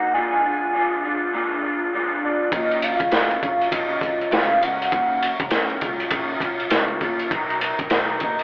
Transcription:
Already playing: clean electric guitar A#3 D#4 F#4, soft synth lead F#5
0.13 clean electric guitar A#2 F3 G#3 D4 F4, soft synth lead G#5
0.44 clean electric guitar G#3 D4 F4
0.73 clean electric guitar F3 G#3 D4 F4
1.04 clean electric guitar G#3 D4 F4
1.33 clean electric guitar A#2 F3 G#3 D4 F4
1.63 clean electric guitar G#3 D4 F4
1.93 clean electric guitar F3 G#3 D4 F4
2.23 clean electric guitar G#3 D4 F4, soft synth lead D5
2.52 upright bass D#2, clean electric guitar D#3 F#3 C#4 F4, soft synth lead D#5, kick, ride
2.71 ride
2.82 clean electric guitar F#3 C#4 F4, soft synth lead F5, ride
3.00 upright bass C#2, kick, ride
3.11 upright bass D#2, clean electric guitar D#3 F#3 C#4 F4, snare, clap, ride
3.31 ride
3.42 upright bass A#1, clean electric guitar F#3 C#4 F4, soft synth lead F5, kick, ride
3.61 ride
3.71 upright bass A#1, clean electric guitar D#3 F#3 C#4 F4, soft synth lead D#5, kick, ride
4.01 upright bass C#2, clean electric guitar F#3 C#4 F4, kick, clap, ride
4.21 ride
4.31 upright bass C#2, clean electric guitar D#3 F#3 C#4 F4, soft synth lead F5, snare, clap, ride
4.61 upright bass C#2, clean electric guitar F#3 C#4, soft synth lead F#5, ride
4.82 ride
4.92 upright bass D#2, clean electric guitar D#3 F#3 C#4, kick, ride
5.22 clean electric guitar F#3 C#4, ride
5.40 upright bass C#2, kick, ride
5.50 upright bass F2, clean electric guitar D#3 C#4, snare, clap, ride
5.70 ride
5.81 upright bass C#2, clean electric guitar F#3 C#4 F4, kick, ride
6.00 ride
6.10 upright bass A#1, clean electric guitar D#3 F#3 C#4 F4, kick, ride
6.41 upright bass B1, clean electric guitar F#3 C#4 F4, kick, clap, ride
6.60 ride
6.70 upright bass C#2, clean electric guitar D#3 F#3 C#4 F4, snare, clap, ride
6.88 ride
7.01 upright bass D#2, clean electric guitar F#3 C#4 F4, kick, ride
7.19 ride
7.31 upright bass B1, clean electric guitar B2 D#3 F#3 B3 D#4 A#4, kick, ride
7.50 ride
7.60 clean electric guitar F#3 B3 D#4 A#4, ride
7.79 upright bass A#1, kick, ride
7.90 upright bass B1, clean electric guitar F#3 B3 D#4 A#4, snare, clap, ride
8.20 upright bass F#1, clean electric guitar F#3 B3 D#4 A#4, soft synth lead D#5, kick, ride
8.39 ride

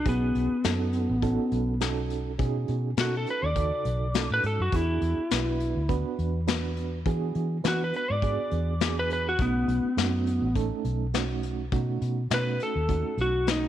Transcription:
0.06 fingered electric bass B1, lead electric guitar B3, reed electric piano C#4 D#4 F#4 G#4, kick, closed hi-hat
0.35 fingered electric bass B1, closed hi-hat
0.51 muted fingered electric bass stroke
0.64 fingered electric bass F#2, reed electric piano C#4 D#4 F#4 A4, snare, closed hi-hat
0.93 closed hi-hat
1.09 fingered electric bass A1
1.22 reed electric piano C#4 D#4 F#4 A4, kick, closed hi-hat
1.51 fingered electric bass B1, closed hi-hat
1.81 reed electric piano C#4 D#4 F#4 A4, snare, closed hi-hat
2.10 closed hi-hat
2.39 fingered electric bass B2, reed electric piano C#4 D#4 F#4 G#4, kick, closed hi-hat
2.68 fingered electric bass B2, closed hi-hat
2.97 fingered electric bass B2, reed electric piano C#4 D#4 F#4 A4, lead electric guitar F#4, snare, closed hi-hat
3.17 lead electric guitar A4
3.27 lead electric guitar B4, closed hi-hat
3.43 fingered electric bass D#2, lead electric guitar D5
3.55 reed electric piano C#3 D#4 F#4 A4, kick, closed hi-hat
3.85 fingered electric bass B1, closed hi-hat
4.14 reed electric piano C#4 D#4 F#4 A4, snare, closed hi-hat
4.30 fingered electric bass A2, lead electric guitar B4
4.43 fingered electric bass G#2, lead electric guitar A4, closed hi-hat
4.59 fingered electric bass F#2, lead electric guitar F#4
4.72 fingered electric bass E2, reed electric piano B3 D4 F#4 G#4, lead electric guitar E4, kick, closed hi-hat
5.01 fingered electric bass E2, closed hi-hat
5.18 muted fingered electric bass stroke
5.31 fingered electric bass B1, reed electric piano B3 D4 F#4 B4, snare, closed hi-hat
5.60 closed hi-hat
5.76 fingered electric bass D2
5.89 reed electric piano B3 D4 F#4 B4, kick, closed hi-hat
6.19 fingered electric bass E2, closed hi-hat
6.47 reed electric piano B3 D4 F#4 B4, snare, closed hi-hat
6.77 closed hi-hat
7.06 fingered electric bass E3, reed electric piano B3 D4 F#4 G#4, kick, closed hi-hat
7.35 fingered electric bass E3, closed hi-hat
7.64 fingered electric bass E3, reed electric piano B3 D4 F#4 B4, snare, closed hi-hat
7.68 lead electric guitar F#4
7.84 lead electric guitar B4
7.93 lead electric guitar B4, closed hi-hat
8.10 fingered electric bass G#2, lead electric guitar D5
8.22 reed electric piano B3 D4 F#4 G#4, kick, closed hi-hat
8.51 fingered electric bass E2, closed hi-hat
8.80 reed electric piano B3 D4 F#4 G#4, snare, closed hi-hat
8.99 lead electric guitar B4
9.10 lead electric guitar B4, closed hi-hat
9.29 lead electric guitar F#4
9.39 fingered electric bass B1, reed electric piano A3 C#4 D#4 F#4, lead electric guitar B3, kick, closed hi-hat
9.68 fingered electric bass B1, closed hi-hat
9.97 fingered electric bass F#2, reed electric piano A3 C#4 D#4 F#4, snare, closed hi-hat
10.26 closed hi-hat
10.42 fingered electric bass A1
10.55 reed electric piano A3 C#4 D#4 A4, kick, closed hi-hat
10.84 fingered electric bass B1, closed hi-hat
11.14 reed electric piano A3 C#4 D#4 F#4, snare, closed hi-hat
11.43 closed hi-hat
11.72 fingered electric bass B2, reed electric piano A3 C#4 D#4 F#4, kick, closed hi-hat
12.01 fingered electric bass B2, closed hi-hat
12.30 fingered electric bass B2, reed electric piano A3 C#4 D#4 F#4, lead electric guitar B4, snare, closed hi-hat
12.60 lead electric guitar A4, closed hi-hat
12.75 fingered electric bass D#2
12.89 reed electric piano A3 C#4 D#4 F#4, kick, closed hi-hat
13.17 fingered electric bass B1, closed hi-hat
13.21 lead electric guitar F#4
13.47 reed electric piano A3 C#4 D#4 F#4, lead electric guitar D#4, snare, closed hi-hat

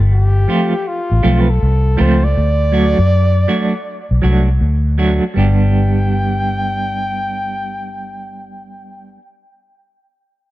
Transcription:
0.00 fingered electric bass G1
0.13 flugelhorn G4
0.48 clean electric guitar F3 A3 C4 F4
0.88 flugelhorn F4
1.11 fingered electric bass A1
1.23 fingered electric bass B1, clean electric guitar F3 A3 C4 F4
1.40 flugelhorn B4
1.50 flugelhorn A4
1.63 fingered electric bass C2
1.97 fingered electric bass C#2, clean electric guitar F3 A3 C4 F4, flugelhorn C5
2.24 flugelhorn D5
2.37 fingered electric bass D2
2.72 clean electric guitar F#3 A3 D4 F#4
2.99 fingered electric bass F#2
3.48 clean electric guitar F#3 A3 D4 F#4
4.11 fingered electric bass B1
4.22 fingered electric bass C2, clean electric guitar F#3 A3 D4 F#4
4.61 fingered electric bass D2
4.98 clean electric guitar F#3 A3 D4 F#4
5.34 fingered electric bass G1, clean electric guitar G3 B3 D4, flugelhorn G5
5.39 clean electric guitar G4

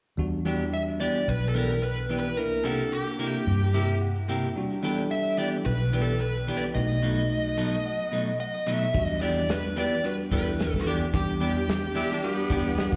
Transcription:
0.17 fingered electric bass E2, tine electric piano G3 D4 F#4
0.45 clean electric guitar E3 B3 D4 G4, tine electric piano G3 D4 F#4
0.74 lead electric guitar E5
1.00 clean electric guitar E3 B3 D4 G4, lead electric guitar D5
1.28 fingered electric bass B1, lead electric guitar B4
1.49 lead electric guitar A4
1.54 clean electric guitar E3 B3 D4 G4, lead electric guitar A#4
1.83 lead electric guitar B4
2.09 clean electric guitar E3 B3 D4 G4
2.19 lead electric guitar B4
2.37 fingered electric bass C2, tine electric piano A#3 D4 E4, lead electric guitar A#4
2.64 clean electric guitar C3 A#3 E4 G4, tine electric piano A#3 D4 F#5, lead electric guitar A4
2.92 lead electric guitar G4
3.19 clean electric guitar C3 A#3 E4 G4
3.47 fingered electric bass G2
3.74 clean electric guitar C3 A#3 E4 G4, tine electric piano E5
4.01 tine electric piano F#5
4.28 clean electric guitar C3 A#3 E4 G4, tine electric piano G5
4.56 fingered electric bass E2, tine electric piano G3 D4 F#4
4.83 clean electric guitar E3 B3 D4 G4, tine electric piano G3 D4 A4
5.11 lead electric guitar E5
5.37 clean electric guitar E3 B3 D4 G4, lead electric guitar D5
5.66 fingered electric bass B1, lead electric guitar B4
5.92 clean electric guitar E3 B3 D4 G4
6.02 lead electric guitar A4
6.21 lead electric guitar B4
6.47 clean electric guitar E3 B3 D4 G4
6.57 lead electric guitar D5
6.74 fingered electric bass B1, tine electric piano A3 D#4 F#4, lead electric guitar D#5
7.02 clean electric guitar B2 F#3 A3 D#4, tine electric piano A3 D#4 F#4
7.57 clean electric guitar B2 F#3 A3 D#4, tine electric piano A5
7.86 tine electric piano F#5
8.12 clean electric guitar B2 F#3 A3 D#4
8.40 lead electric guitar D#5, tine electric piano F#5
8.55 tine electric piano D#5
8.66 clean electric guitar B2 F#3 A3 D#4, lead electric guitar E5
8.94 fingered electric bass E2, tine electric piano G3 D4 F#4, kick, closed hi-hat
9.05 lead electric guitar D#5
9.21 clean electric guitar E3 B3 D4 G4, lead electric guitar D5, closed hi-hat
9.49 lead electric guitar B4, snare, closed hi-hat
9.76 clean electric guitar E3 B3 D4 G4, lead electric guitar D5, snare, closed hi-hat
10.04 tine electric piano G3 D4 F#4, lead electric guitar B4, closed hi-hat
10.31 fingered electric bass E2, clean electric guitar E3 B3 D4 G4, tine electric piano G3 D4 E4, lead electric guitar B4, kick, closed hi-hat
10.60 snare, closed hi-hat
10.74 fingered electric bass E2, kick
10.81 lead electric guitar F#4
10.86 clean electric guitar E3 B3 D4 G4, lead electric guitar G4, closed hi-hat
11.13 fingered electric bass E2, tine electric piano G3 D4 G4, lead electric guitar G4, kick, closed hi-hat
11.40 clean electric guitar E3 B3 D4 G4, closed hi-hat
11.68 snare, closed hi-hat
11.94 clean electric guitar E3 B3 D4 G4, tenor saxophone E4, closed hi-hat
12.11 tenor saxophone D4, snare
12.23 tine electric piano G3 D4 F#4, tenor saxophone B3, closed hi-hat
12.50 fingered electric bass E2, clean electric guitar E3 B3 D4 G4, tine electric piano G3 D4 F#5, kick, closed hi-hat
12.77 muted fingered electric bass stroke, snare, closed hi-hat
12.92 fingered electric bass E2, kick

